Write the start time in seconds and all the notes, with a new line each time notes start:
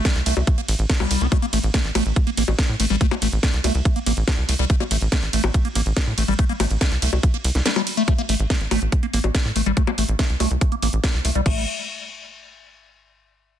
0.05 G3, kick, snare, closed hi-hat
0.16 C2, closed hi-hat
0.26 C2 A3, open hi-hat, ride
0.37 C2, closed hi-hat, high bongo
0.47 kick, closed hi-hat
0.58 A#3, closed hi-hat
0.68 A1, open hi-hat, ride
0.79 A1, closed hi-hat
0.90 A3, kick, snare, closed hi-hat
1.00 C2 G3, high bongo
1.11 C2, open hi-hat, ride
1.21 C2 C4, closed hi-hat
1.32 A3, kick, closed hi-hat, high bongo
1.42 A#3, closed hi-hat
1.53 A1 A3, open hi-hat, ride
1.63 A1, closed hi-hat
1.74 A3, kick, snare, closed hi-hat
1.85 A1, closed hi-hat
1.95 A1 A3, open hi-hat, ride, high bongo
2.06 A1, closed hi-hat
2.16 kick, closed hi-hat
2.27 A#3, closed hi-hat
2.37 A1 A#3, open hi-hat, ride
2.48 A1, closed hi-hat, high bongo
2.59 kick, snare, closed hi-hat
2.69 A2
2.80 A1 A3, open hi-hat, ride
2.90 A1 G3, closed hi-hat
3.01 A3, kick, closed hi-hat
3.11 A#3, closed hi-hat, high bongo
3.22 A1 A3, open hi-hat, ride
3.33 A1, closed hi-hat
3.43 A3, kick, snare, closed hi-hat
3.54 C2, closed hi-hat
3.64 C2 A3, open hi-hat, ride, high bongo
3.75 C2, closed hi-hat
3.85 kick, closed hi-hat
3.96 A#3, closed hi-hat
4.06 A1 A#3, open hi-hat, ride
4.17 A1, closed hi-hat
4.28 kick, snare, closed hi-hat, high bongo
4.38 C2
4.49 C2 A3, open hi-hat, ride
4.59 C2 G3, closed hi-hat
4.70 A3, kick, closed hi-hat
4.80 A#3, closed hi-hat, high bongo
4.91 A1 A3, open hi-hat, ride
5.01 A1, closed hi-hat
5.12 A3, kick, snare, closed hi-hat
5.23 A1, closed hi-hat
5.33 A1 A3, open hi-hat, ride
5.44 A1, high bongo
5.54 kick, closed hi-hat
5.65 A#3, closed hi-hat
5.75 A1 A#3, open hi-hat, ride
5.86 A1, closed hi-hat
5.97 kick, snare, closed hi-hat, high bongo
6.07 A2
6.18 A1 A3, open hi-hat, ride
6.28 A1 G3, closed hi-hat
6.39 A3, kick, closed hi-hat
6.49 A#3, closed hi-hat
6.60 A1 A3, open hi-hat, ride, high bongo
6.71 A1, closed hi-hat
6.81 A3, kick, snare, closed hi-hat
6.92 C2, closed hi-hat
7.02 C2 A3, open hi-hat, ride
7.13 C2, closed hi-hat, high bongo
7.23 kick, closed hi-hat
7.34 A#3, closed hi-hat
7.44 C2, open hi-hat, ride
7.55 C2, snare, closed hi-hat
7.66 G3, snare, closed hi-hat
7.76 G3, closed hi-hat, high bongo
7.87 open hi-hat, ride
7.97 A3, closed hi-hat
8.08 A3, kick, closed hi-hat, high bongo
8.18 A#3, closed hi-hat
8.29 A1 A3, open hi-hat
8.40 A1, closed hi-hat
8.50 A3, kick, snare, closed hi-hat
8.61 A1, closed hi-hat
8.71 A1 A3, open hi-hat, high bongo
8.82 A1, closed hi-hat
8.92 kick, closed hi-hat
9.03 A#3, closed hi-hat
9.13 A1 A#3, open hi-hat
9.24 A1, closed hi-hat, high bongo
9.35 kick, snare, closed hi-hat
9.45 A2
9.56 A1 A3, open hi-hat
9.66 A1 G3, closed hi-hat
9.77 A3, kick, closed hi-hat
9.87 A#3, closed hi-hat, high bongo
9.98 A1 A3, open hi-hat
10.09 A1, closed hi-hat
10.19 A3, kick, snare, closed hi-hat
10.30 C2, closed hi-hat
10.40 C2 A3, open hi-hat, high bongo
10.51 C2, closed hi-hat
10.61 kick, closed hi-hat
10.72 A#3, closed hi-hat
10.82 A1 A#3, open hi-hat
10.93 A1, closed hi-hat
11.04 kick, snare, closed hi-hat, high bongo
11.14 C2
11.25 C2 A3, open hi-hat
11.35 C2 G3, closed hi-hat
11.46 A1 A3, kick, crash